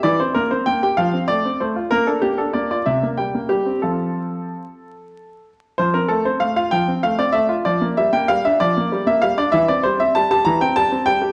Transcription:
<<
  \new Staff \with { instrumentName = "Grand piano" } { \time 6/8 \key f \major \tempo 4. = 64 d''16 c''16 bes'16 c''16 g''16 g''16 f''8 d''8 c''8 | bes'16 a'16 g'16 a'16 d''16 d''16 e''8 g''8 g'8 | a'2~ a'8 r8 | c''16 bes'16 a'16 c''16 f''16 f''16 g''8 f''16 d''16 e''8 |
d''8 e''16 g''16 f''16 e''16 d''8. e''16 f''16 d''16 | e''16 d''16 c''16 e''16 a''16 a''16 bes''16 g''16 a''8 g''8 | }
  \new Staff \with { instrumentName = "Grand piano" } { \time 6/8 \key f \major e16 c'16 bes16 c'16 bes16 g'16 f16 c'16 a16 c'16 a16 f'16 | bes16 d'16 bes16 d'16 bes16 f'16 c16 bes16 g16 bes16 g16 c'16 | <f c' f'>4. r4. | f16 c'16 a16 c'16 a16 f'16 f16 c'16 a16 c'16 a16 f'16 |
f16 bes16 g16 bes16 g16 d'16 f16 bes16 g16 bes16 g16 d'16 | e16 c'16 g16 c'16 g16 g'16 e16 c'16 g16 c'16 g16 g'16 | }
>>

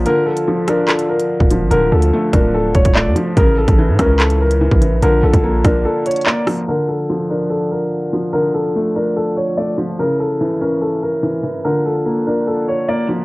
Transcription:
<<
  \new Staff \with { instrumentName = "Grand piano" } { \time 4/4 \key d \minor \tempo 4 = 145 bes'8 a'4 bes'8 a'8 bes'4. | bes'8 a'4 bes'8 a'8 cis''8 d''8 r8 | bes'8 a'4 bes'8 a'8 bes'4. | bes'8 a'4 bes'8 a'8 cis''8 d''8 r8 |
bes'8 a'4 bes'8 a'8 bes'4. | bes'8 a'4 bes'8 a'8 cis''8 d''8 r8 | bes'8 a'4 bes'8 a'8 bes'4. | bes'8 a'4 bes'8 a'8 cis''8 d''8 r8 | }
  \new Staff \with { instrumentName = "Felt piano" } { \clef bass \time 4/4 \key d \minor d4 f8 d'2 f8 | d4 a8 d'4. a8 f8 | cis4 e8 cis'4. e8 e8 | d4 bes8 d'4. bes8 f8 |
d4 f8 d'2 f8 | d4 a8 d'4. a8 f8 | cis4 e8 cis'4. e8 e8 | d4 bes8 d'4. bes8 f8 | }
  \new Staff \with { instrumentName = "French horn section" } { \clef bass \time 4/4 \key d \minor <d f f'>1~ | <d f f'>1 | <cis e e'>1 | <d f bes f'>1 |
<d f f'>1~ | <d f f'>1 | <cis e cis' e'>1 | <d f bes f'>1 | }
  \new Staff \with { instrumentName = "808-style bass" } { \clef bass \time 4/4 \key d \minor r2. r16 d,,8 a,,16 | d,,8 d,8 r8 d,,4 d,,16 d,,8 f,16 r8 | a,,8. a,,8 a,16 cis,4.~ cis,16 a,,8 bes,,16 | bes,,8 bes,,16 bes,,8. bes,,8 r2 |
r1 | r1 | r1 | r1 | }
  \new DrumStaff \with { instrumentName = "Drums" } \drummode { \time 4/4 hh8. hh16 r8 <hh ss>8 <hc hh>16 hh8 hh16 r16 bd16 hh8 | hh8. hh16 r8 <hh bd ss>8 r8 <hh bd>16 <hh bd>16 hc8 hh8 | <hh bd>8. <hh bd>16 r8 <hh bd ss>8 <hc hh>16 hh8 hh16 r16 bd16 hh8 | hh8. <hh bd>16 r8 <hh bd ss>8 r8 hh32 hh32 hh32 hh32 hc8 <hho ss>8 |
r4 r4 r4 r4 | r4 r4 r4 r4 | r4 r4 r4 r4 | r4 r4 r4 r4 | }
>>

